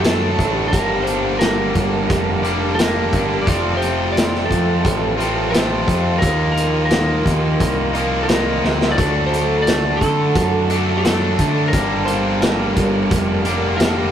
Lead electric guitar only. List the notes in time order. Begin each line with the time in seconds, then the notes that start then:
0.00 A4
0.54 G4
0.68 A#4
1.03 C5
1.39 A#4
2.75 A#4
3.42 D5
3.77 C5
4.12 D5
4.46 A4
5.51 C5
6.19 A#4
6.52 A#4
6.85 A#4
8.23 A#4
8.92 D5
9.26 C5
9.62 D5
9.97 A4
10.98 A4
11.68 A#4
12.05 C5
12.42 A#4
13.77 A#4